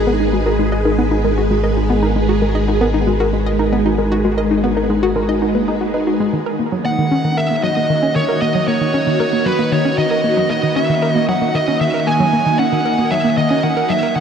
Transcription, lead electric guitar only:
6.85 7.39 F#5 medium
7.38 7.63 E5 medium
7.63 8.15 D#5 medium
8.16 8.41 C#5 medium
8.42 8.67 D#5 medium
8.68 9.19 C#5 medium
9.20 9.47 C#5 medium
9.46 9.73 B4 medium
9.72 9.98 C#5 medium
9.98 10.49 D#5 medium
10.50 10.76 D#5 loud
10.76 11.12 E5 loud
11.12 11.25 D#5 loud
11.29 11.56 F#5 medium
11.55 11.80 D#5 loud
11.81 12.08 E5 medium
12.07 12.59 G#5 medium
12.59 13.13 F#5 loud
13.11 13.37 E5 medium
13.37 13.62 D#5 medium
13.63 13.90 F#5 loud
13.89 14.14 E5 medium
14.16 14.20 F#5 medium

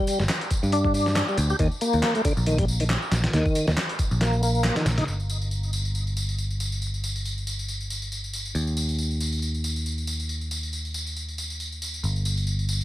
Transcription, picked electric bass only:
0.20 0.26 G1 medium
0.63 1.21 G2 medium
1.38 1.52 D2 loud
1.59 1.67 D#2 loud
1.94 2.00 D#2 medium
2.37 2.95 A#1 medium
3.12 3.26 A#1 medium
3.34 3.41 D#2 loud
3.68 3.74 D#2 medium
4.11 4.69 A#1 medium
4.86 5.00 A#1 medium
5.08 8.54 G1 medium
8.55 12.01 D#2 medium
12.04 12.84 G1 medium

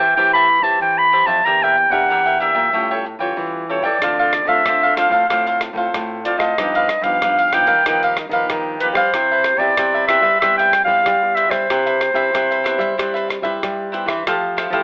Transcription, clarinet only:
0.00 0.15 G5 medium
0.16 0.31 G5 medium
0.33 0.64 B5 medium
0.63 0.80 A5 medium
0.82 1.00 G5 medium
0.98 1.28 B5 medium
1.26 1.46 A5 medium
1.45 1.64 A#5 medium
1.62 1.93 G5 medium
1.91 2.40 F#5 medium
2.40 3.01 E5 medium
3.70 3.84 C#5 medium
3.85 4.49 D5 medium
4.48 4.95 E5 medium
4.96 5.27 F5 medium
5.29 5.59 F5 medium
6.25 6.38 D5 medium
6.39 7.05 D#5 medium
7.04 7.55 F5 medium
7.53 7.86 G5 medium
7.88 8.02 G5 medium
8.80 8.88 B4 medium
8.95 9.60 C5 medium
9.58 10.07 D5 medium
10.07 10.39 E5 medium
10.40 10.56 E5 medium
10.57 10.84 G5 medium
10.85 11.37 F5 loud
11.35 11.52 E5 medium
11.51 13.61 C5 medium

